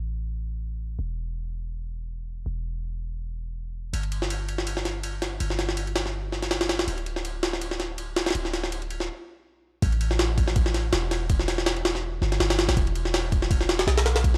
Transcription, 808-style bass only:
0, 0, Header, 1, 2, 480
1, 0, Start_track
1, 0, Tempo, 368098
1, 1292, Time_signature, 4, 2, 24, 8
1, 18746, End_track
2, 0, Start_track
2, 0, Title_t, "808-style bass"
2, 0, Program_c, 0, 38
2, 0, Note_on_c, 0, 33, 88
2, 1269, Note_off_c, 0, 33, 0
2, 1288, Note_on_c, 0, 28, 86
2, 3188, Note_off_c, 0, 28, 0
2, 3208, Note_on_c, 0, 28, 86
2, 5108, Note_off_c, 0, 28, 0
2, 5128, Note_on_c, 0, 31, 86
2, 7028, Note_off_c, 0, 31, 0
2, 7047, Note_on_c, 0, 31, 87
2, 8948, Note_off_c, 0, 31, 0
2, 8963, Note_on_c, 0, 26, 87
2, 10866, Note_off_c, 0, 26, 0
2, 10888, Note_on_c, 0, 26, 89
2, 11850, Note_off_c, 0, 26, 0
2, 12810, Note_on_c, 0, 33, 103
2, 14233, Note_off_c, 0, 33, 0
2, 14249, Note_on_c, 0, 28, 87
2, 15913, Note_off_c, 0, 28, 0
2, 15930, Note_on_c, 0, 31, 93
2, 16149, Note_off_c, 0, 31, 0
2, 16167, Note_on_c, 0, 31, 84
2, 16519, Note_off_c, 0, 31, 0
2, 16539, Note_on_c, 0, 33, 98
2, 16640, Note_off_c, 0, 33, 0
2, 16650, Note_on_c, 0, 28, 106
2, 18074, Note_off_c, 0, 28, 0
2, 18087, Note_on_c, 0, 35, 92
2, 18746, Note_off_c, 0, 35, 0
2, 18746, End_track
0, 0, End_of_file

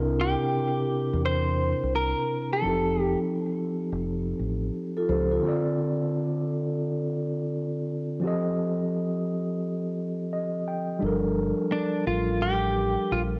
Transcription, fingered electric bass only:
0, 0, Header, 1, 2, 480
1, 0, Start_track
1, 0, Key_signature, -2, "minor"
1, 0, Tempo, 697674
1, 1818, Time_signature, 4, 2, 24, 8
1, 9215, End_track
2, 0, Start_track
2, 0, Title_t, "Fingered electric bass"
2, 0, Program_c, 0, 33
2, 0, Note_on_c, 0, 36, 93
2, 239, Note_off_c, 0, 36, 0
2, 781, Note_on_c, 0, 40, 95
2, 1188, Note_off_c, 0, 40, 0
2, 1261, Note_on_c, 0, 36, 81
2, 1463, Note_off_c, 0, 36, 0
2, 1822, Note_on_c, 0, 29, 92
2, 2159, Note_off_c, 0, 29, 0
2, 2699, Note_on_c, 0, 29, 88
2, 2972, Note_off_c, 0, 29, 0
2, 3023, Note_on_c, 0, 33, 81
2, 3225, Note_off_c, 0, 33, 0
2, 3502, Note_on_c, 0, 37, 90
2, 3705, Note_off_c, 0, 37, 0
2, 7582, Note_on_c, 0, 31, 96
2, 7919, Note_off_c, 0, 31, 0
2, 8304, Note_on_c, 0, 33, 89
2, 8911, Note_off_c, 0, 33, 0
2, 9023, Note_on_c, 0, 34, 82
2, 9215, Note_off_c, 0, 34, 0
2, 9215, End_track
0, 0, End_of_file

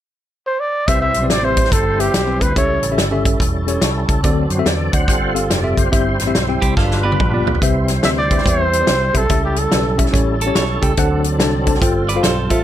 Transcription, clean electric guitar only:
0, 0, Header, 1, 2, 480
1, 0, Start_track
1, 0, Key_signature, 0, "major"
1, 0, Tempo, 420757
1, 1006, Time_signature, 4, 2, 24, 8
1, 14417, End_track
2, 0, Start_track
2, 0, Title_t, "Clean electric guitar"
2, 0, Program_c, 0, 27
2, 7547, Note_on_c, 0, 67, 83
2, 7551, Note_on_c, 0, 64, 48
2, 7714, Note_off_c, 0, 64, 0
2, 7715, Note_off_c, 0, 67, 0
2, 7721, Note_on_c, 0, 65, 66
2, 7722, Note_on_c, 0, 69, 66
2, 8014, Note_off_c, 0, 69, 0
2, 8016, Note_off_c, 0, 65, 0
2, 8024, Note_on_c, 0, 71, 73
2, 8034, Note_on_c, 0, 67, 62
2, 8649, Note_off_c, 0, 71, 0
2, 8654, Note_off_c, 0, 67, 0
2, 11884, Note_on_c, 0, 69, 76
2, 12044, Note_off_c, 0, 69, 0
2, 12045, Note_on_c, 0, 73, 78
2, 12055, Note_on_c, 0, 69, 63
2, 12330, Note_off_c, 0, 69, 0
2, 12337, Note_off_c, 0, 73, 0
2, 12344, Note_on_c, 0, 69, 72
2, 12804, Note_off_c, 0, 69, 0
2, 13788, Note_on_c, 0, 74, 78
2, 13795, Note_on_c, 0, 71, 63
2, 13948, Note_off_c, 0, 74, 0
2, 13953, Note_on_c, 0, 72, 81
2, 13958, Note_off_c, 0, 71, 0
2, 13967, Note_on_c, 0, 69, 68
2, 14249, Note_off_c, 0, 69, 0
2, 14249, Note_off_c, 0, 72, 0
2, 14263, Note_on_c, 0, 69, 69
2, 14269, Note_on_c, 0, 65, 60
2, 14417, Note_off_c, 0, 65, 0
2, 14417, Note_off_c, 0, 69, 0
2, 14417, End_track
0, 0, End_of_file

